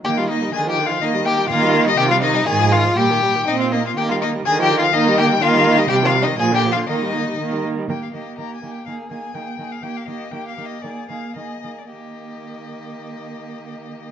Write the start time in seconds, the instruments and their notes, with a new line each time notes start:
0.05 cello D#3, viola A#3, violin G4 G5
0.17 viola G3, violin F4 F5
0.29 viola A#3, violin D#4 D#5
0.42 viola G3
0.53 viola D3, cello D#3, violin G#4 G#5
0.66 viola F3
0.70 violin G4 G5
0.78 viola D3
0.86 violin F4 F5
0.91 viola F3
1.02 cello D#3, viola A#3, violin D#4 D#5
1.14 viola G3
1.25 viola A#3, violin G4 G5
1.37 viola G3
1.49 cello D#3, viola A#3, violin F4 F5
1.62 viola G3
1.73 viola A#3
1.86 viola G3, violin D#4 D#5
1.97 cello C3, viola D#3, violin G4 G5
2.08 viola G3, violin F4 F5
2.22 viola D#3, violin D#4 D#5
2.34 viola G3
2.46 cello G#2, viola D#3, violin G#4 G#5
2.59 viola F3
2.72 viola D#3, violin F4 F5
2.85 viola F3
2.97 cello A#2, viola G3, violin G4 G5
3.10 viola D#3
3.22 viola G3
3.35 viola D#3
3.47 cello A#2, viola C4, violin D#4 D#5
3.59 violin F4 F5
3.72 viola A#3, violin D#4 D#5
3.85 violin F4 F5
3.97 cello D#3, viola A#3, violin G4 G5
4.09 viola G3, violin F4 F5
4.22 viola A#3, violin D#4 D#5
4.35 viola G3
4.45 viola D3, cello D#3, violin G#4 G#5
4.58 viola F3, violin G4
4.63 violin G5
4.71 viola D3
4.78 viola F3, violin F4 F5
4.94 cello D#3, viola A#3, violin D#4 D#5
5.08 viola G3
5.18 viola A#3, violin G4 G5
5.32 viola G3
5.41 cello D#3, viola A#3, violin F4 F5
5.55 viola G3
5.67 viola A#3
5.77 viola G3, violin D#4 D#5
5.88 cello C3, viola G3, violin G4 G5
6.02 viola D#3, violin F4
6.07 violin F5
6.15 viola G3
6.22 violin D#4 D#5
6.27 viola D#3
6.38 cello A#2, viola F3, violin G#4 G#5
6.51 viola D3, violin G4
6.56 violin G5
6.65 viola F3
6.72 violin F4 F5
6.76 viola D3
6.87 cello D#3, viola A#3, violin D#4 D#5
7.02 viola G3
7.14 viola A#3
7.27 viola G3
7.38 cello D#3, viola A#3
7.52 viola G3
7.65 viola A#3
7.77 viola G3
7.89 cello D#3, viola A#3, violin G4 G5
8.03 violin F5
8.13 cello D#3, viola A#3, violin G4 D#5
8.38 cello D#3, viola A#3, violin G4 A#5
8.56 violin G#5
8.62 cello D#3, viola A#3, violin G4
8.72 violin G5
8.86 cello D#3, viola A#3, violin G#4 F5
9.10 cello D#3, viola A#3, violin G#4 G#5
9.34 cello D#3, viola A#3, violin G#4 G5
9.58 cello D#3, viola A#3, violin G#4
9.72 violin F5
9.82 cello D#3, viola A#3, violin G4 G5
9.97 violin F5
10.07 cello D#3, viola A#3, violin G4 D#5
10.32 cello D#3, viola A#3, violin G4 G5
10.48 violin F5
10.57 cello D#3, viola A#3, violin G4
10.65 violin D#5
10.82 cello D#3, viola A#3, violin G#4 D5
11.09 cello D#3, viola A#3, violin G#4 F5
11.35 cello D#3, viola A#3, violin G#4 D#5
11.62 cello D#3, viola A#3, violin G#4
11.78 violin D5
11.91 cello D#3, viola A#3, violin G4 D#5